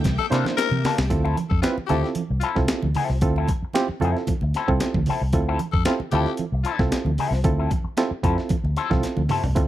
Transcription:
Already playing: string machine A#3 E5 G5 D6
0.04 fingered electric bass C2, kick, snare, closed hi-hat, muted conga, high conga
0.18 tenor saxophone A4, muted clean electric guitar stroke, muted conga
0.30 fingered electric bass C3, clean electric guitar E3 A#3 D4 A4, reed electric piano A#3 D4 E4 C5, snare, closed hi-hat
0.45 muted clean electric guitar stroke, snare, high conga
0.57 tenor saxophone A#4, muted clean electric guitar stroke, snare, closed hi-hat, muted conga
0.71 fingered electric bass C3, muted clean electric guitar stroke, muted conga, high conga
0.84 clean electric guitar E3 A#3 D4 A4, snare, open hi-hat, low conga
0.98 fingered electric bass C2, muted clean electric guitar stroke, snare
1.10 fingered electric bass D2, reed electric piano C4 E4 F4 A4, muted clean electric guitar stroke, kick, closed hi-hat, muted conga
1.24 clean electric guitar F3 C4 E4 A4, muted conga
1.37 muted clean electric guitar stroke, closed hi-hat, high conga
1.49 fingered electric bass F2, tenor saxophone A4, muted clean electric guitar stroke, kick
1.62 reed electric piano C4 E4 F4 B4, tenor saxophone F4, snare, closed hi-hat, muted conga
1.77 muted clean electric guitar stroke, muted fingered electric bass stroke, muted conga
1.86 fingered electric bass D2, clean electric guitar F3 C4 E4 A4, reed electric piano C4 E4 F4 A4, tenor saxophone G4, closed hi-hat, low conga
2.03 muted clean electric guitar stroke, snare
2.15 closed hi-hat, muted conga, high conga
2.30 fingered electric bass C2, muted clean electric guitar stroke
2.40 clean electric guitar F3 C4 E4 A4, tenor saxophone F4, closed hi-hat
2.56 fingered electric bass C2, reed electric piano C4 E4 F4 A4, muted clean electric guitar stroke, kick, snare
2.68 muted fingered electric bass stroke, muted clean electric guitar stroke, snare, closed hi-hat
2.82 fingered electric bass D2, muted clean electric guitar stroke, muted conga, high conga
2.95 clean electric guitar F3 C4 E4 A4, open hi-hat, low conga
3.09 fingered electric bass C2, muted clean electric guitar stroke, snare
3.21 fingered electric bass D2, reed electric piano C4 E4 F4 A4, muted clean electric guitar stroke, kick, closed hi-hat, muted conga
3.36 clean electric guitar F3 C4 E4 A4, muted conga
3.48 muted clean electric guitar stroke, kick, closed hi-hat, high conga
3.63 muted fingered electric bass stroke, muted clean electric guitar stroke
3.73 reed electric piano C4 E4 F4 G4, snare, closed hi-hat, muted conga
3.88 muted fingered electric bass stroke, muted clean electric guitar stroke, muted conga
4.00 fingered electric bass F2, clean electric guitar F3 C4, reed electric piano C4 E4 F4 A4, closed hi-hat, low conga
4.04 clean electric guitar E4 A4
4.17 muted clean electric guitar stroke, snare
4.27 kick, closed hi-hat, muted conga, high conga
4.41 fingered electric bass D2, muted clean electric guitar stroke, muted conga
4.54 clean electric guitar F3 C4 E4 A4, snare, closed hi-hat
4.68 fingered electric bass C2, reed electric piano C4 E4 F4 A4, muted clean electric guitar stroke, kick
4.80 muted clean electric guitar stroke, snare, closed hi-hat, muted conga
4.94 fingered electric bass D2, muted clean electric guitar stroke, kick, high conga
5.06 clean electric guitar F3 C4 E4, open hi-hat, low conga
5.10 clean electric guitar A4
5.21 fingered electric bass C2
5.33 fingered electric bass D2, reed electric piano C4 E4 F4 A4, muted clean electric guitar stroke, kick, closed hi-hat, muted conga
5.48 clean electric guitar F3 C4 E4 A4
5.59 muted clean electric guitar stroke, closed hi-hat, high conga
5.72 fingered electric bass F2, tenor saxophone A4, muted clean electric guitar stroke, kick
5.85 reed electric piano C4 E4 F4 A4, tenor saxophone F4, snare, closed hi-hat
6.00 muted fingered electric bass stroke, muted clean electric guitar stroke, muted conga
6.11 fingered electric bass D2, clean electric guitar F3 C4 E4 A4, reed electric piano C4 E4 F4 A4, tenor saxophone G4, closed hi-hat, low conga
6.26 muted clean electric guitar stroke, snare
6.37 closed hi-hat, muted conga, high conga
6.52 fingered electric bass C2, muted clean electric guitar stroke
6.63 clean electric guitar F3 C4 E4 A4, tenor saxophone F4, closed hi-hat
6.79 fingered electric bass C2, reed electric piano C4 E4 F4 A4, muted clean electric guitar stroke, kick, snare
6.91 muted fingered electric bass stroke, muted clean electric guitar stroke, snare, closed hi-hat
7.05 fingered electric bass D2, muted clean electric guitar stroke, high conga
7.18 clean electric guitar F3 C4 E4 A4, open hi-hat, low conga
7.31 fingered electric bass C2, muted clean electric guitar stroke, snare
7.44 fingered electric bass D2, reed electric piano C4 E4 F4 A4, muted clean electric guitar stroke, kick, closed hi-hat, muted conga, low conga
7.59 clean electric guitar F3 C4 E4 A4
7.71 muted clean electric guitar stroke, kick, closed hi-hat, high conga
7.84 muted fingered electric bass stroke, muted clean electric guitar stroke
7.97 reed electric piano C4 E4 F4 A4, muted clean electric guitar stroke, snare, closed hi-hat, muted conga
8.11 muted fingered electric bass stroke, muted clean electric guitar stroke
8.23 fingered electric bass F2, clean electric guitar F3 C4 E4 A4, reed electric piano C4 E4 F4 A4, kick, closed hi-hat, low conga
8.38 muted clean electric guitar stroke, snare
8.49 kick, closed hi-hat, muted conga, high conga
8.64 fingered electric bass D2, muted clean electric guitar stroke, muted conga
8.77 clean electric guitar F3 C4 E4 A4, snare, closed hi-hat
8.90 fingered electric bass C2, reed electric piano C4 E4 F4 A4, muted clean electric guitar stroke, kick, snare, high conga
9.03 muted clean electric guitar stroke, snare, closed hi-hat, muted conga
9.17 fingered electric bass D2, muted clean electric guitar stroke, muted conga, high conga
9.29 clean electric guitar F3 C4 E4 A4, mid tom, open hi-hat, low conga
9.44 fingered electric bass C2, muted clean electric guitar stroke, floor tom
9.55 fingered electric bass D2, reed electric piano C4 E4 F4 A4, muted clean electric guitar stroke, kick, closed hi-hat, muted conga

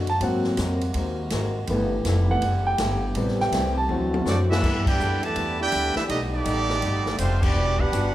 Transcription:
Already playing: upright bass F#2, trombone section D3 A3 B3 F#4, hollow-body jazz guitar D4 F#4
0.07 grand piano A5, ride
0.21 upright bass G#2, trombone section C3 G#3 A#3, grand piano F#3 A#3 C4 F#5, hollow-body jazz guitar G#3 C4 F#4 A#4, kick, ride
0.44 snare
0.57 upright bass F2, hollow-body jazz guitar G#3 C4 F#4 A#4, kick, snare, hi-hat pedal, ride
0.81 ride
0.94 upright bass D#2, hollow-body jazz guitar G#3 C4 F#4, kick, ride
0.99 hollow-body jazz guitar A#4
1.30 upright bass G#1, hollow-body jazz guitar G#3 C4, kick, snare, hi-hat pedal, ride
1.34 hollow-body jazz guitar F#4 A#4
1.67 upright bass G1, trombone section E3 A3 B3 G4, grand piano E3 A3 B3, kick, ride
1.72 hollow-body jazz guitar G3 B3 E4 A4
2.05 upright bass F1, hollow-body jazz guitar G3 B3 E4, kick, snare, hi-hat pedal, ride
2.09 hollow-body jazz guitar A4
2.29 grand piano E3 A3 B3 F#5
2.42 upright bass F#1, hollow-body jazz guitar G3 B3 E4, kick, ride
2.47 hollow-body jazz guitar A4
2.67 grand piano G5
2.78 upright bass G1, hollow-body jazz guitar G3 B3 E4 A4, kick, snare, hi-hat pedal, ride
3.14 upright bass A1, hollow-body jazz guitar A2 G3 C4, trombone section C3 E3, grand piano C3 G3 B3, kick, ride
3.19 hollow-body jazz guitar E4
3.28 snare
3.40 grand piano G5, snare
3.52 upright bass C2, hollow-body jazz guitar A2 G3 C4 E4, kick, snare, hi-hat pedal, ride
3.78 grand piano A5
3.88 upright bass D2, trombone section D3 F#4, hollow-body jazz guitar D3 A3 C4, grand piano E3 F#3 C4, high tom
3.92 hollow-body jazz guitar F#4
4.14 high tom
4.25 upright bass F#2, hollow-body jazz guitar D3 A3 C4 F#4, trombone section F#3 A3 D4, trumpet section C4 F#4 A4 D5, snare, hi-hat pedal
4.47 trombone section E3 B3 E4, trumpet section D4 A4 B4 E5
4.52 snare
4.62 upright bass G2, trombone section E3 A3 B3 G4, hollow-body jazz guitar G3 B3 E4 A4, kick, snare, crash
4.84 trombone section D4 E4 G4, trumpet section E4 B4 G5, kick, crash
4.88 trumpet section D5
4.99 upright bass F#2, hollow-body jazz guitar G3 B3 E4 A4, hi-hat pedal
5.22 trombone section D3 E3 A3, trumpet section E4 B4 D5 A5, ride
5.35 upright bass E2, hollow-body jazz guitar G3 B3 E4 A4, kick, ride
5.59 trombone section D4 E4 G4, trumpet section E4 B4 D5 G5
5.72 upright bass D2, hollow-body jazz guitar G3 B3 E4 A4, kick, hi-hat pedal, ride
5.94 trombone section E3 B3 E4, trumpet section D4 A4 B4 E5, muted upright bass stroke, snare
6.07 upright bass B1, hollow-body jazz guitar B2 G3 A3, trombone section D#3 G3 A3 D#4 G4, trumpet section A3 D4 G4 D#5, kick, ride
6.12 hollow-body jazz guitar D#4
6.31 trombone section G3 A3 D#4, trumpet section A3 D#4 G4 D5
6.45 upright bass A1, hollow-body jazz guitar B2 G3 A3 D#4, kick, hi-hat pedal, ride
6.70 snare
6.81 upright bass G1, hollow-body jazz guitar B2 G3 A3 D#4, kick, ride
7.06 snare
7.18 upright bass F1, hollow-body jazz guitar B2 G3 A3 D#4, trumpet section A3 D4 F4 C5, trombone section C4, kick, hi-hat pedal, ride
7.42 trombone section G3 B3 D4, trumpet section B3 F#4 G4 D5, kick, crash
7.55 upright bass E1, hollow-body jazz guitar E3 G3 D4 F#4, trombone section E3 G3 D4 G4
7.78 trombone section B3 D4 G4, trumpet section D4 G4 B4 F#5, kick
7.92 upright bass G1, hollow-body jazz guitar E3 G3 D4 F#4, hi-hat pedal, ride

